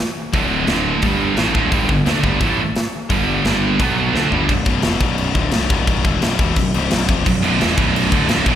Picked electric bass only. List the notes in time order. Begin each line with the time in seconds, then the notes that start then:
0.33 D1
0.68 D1
1.03 G1
1.39 A1
1.55 D1
1.72 G1
1.89 G1
2.06 D2
2.23 G1
2.41 A1
3.10 G1
3.45 G1
3.80 B1
4.14 D2
4.31 G1
4.49 B0
4.66 B0
4.84 E1
5.00 B0
5.35 D1
5.53 C1
5.71 B0
6.05 E1
6.21 B0
6.39 E1
6.57 B0
6.74 C1
6.91 B0
7.09 F1
7.26 B0
7.43 B0
7.60 E1
7.78 B0
8.12 D1
8.29 C1
8.46 B0